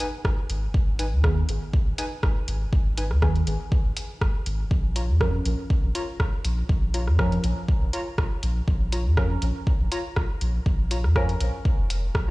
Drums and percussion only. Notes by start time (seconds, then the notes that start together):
0.00 closed hi-hat
0.25 kick, cross-stick
0.50 closed hi-hat
0.74 kick
0.99 closed hi-hat
1.24 kick, cross-stick
1.49 closed hi-hat
1.74 kick
1.98 closed hi-hat
2.23 kick, cross-stick
2.48 closed hi-hat
2.73 kick
2.98 closed hi-hat
3.11 cross-stick
3.22 kick, cross-stick
3.36 closed hi-hat
3.47 closed hi-hat
3.72 kick
3.97 closed hi-hat
4.21 kick, cross-stick
4.46 closed hi-hat
4.71 kick
4.96 closed hi-hat
5.21 kick, cross-stick
5.45 closed hi-hat
5.70 kick
5.95 closed hi-hat
6.20 kick, cross-stick
6.45 closed hi-hat
6.69 kick
6.94 closed hi-hat
7.07 cross-stick
7.19 kick, cross-stick
7.32 closed hi-hat
7.44 closed hi-hat
7.68 kick
7.93 closed hi-hat
8.18 kick, cross-stick
8.43 closed hi-hat
8.68 kick
8.92 closed hi-hat
9.17 kick, cross-stick
9.42 closed hi-hat
9.67 kick
9.92 closed hi-hat
10.16 kick, cross-stick
10.41 closed hi-hat
10.66 kick
10.91 closed hi-hat
11.04 cross-stick
11.16 kick, cross-stick
11.29 closed hi-hat
11.40 closed hi-hat
11.65 kick
11.90 closed hi-hat
12.15 kick, cross-stick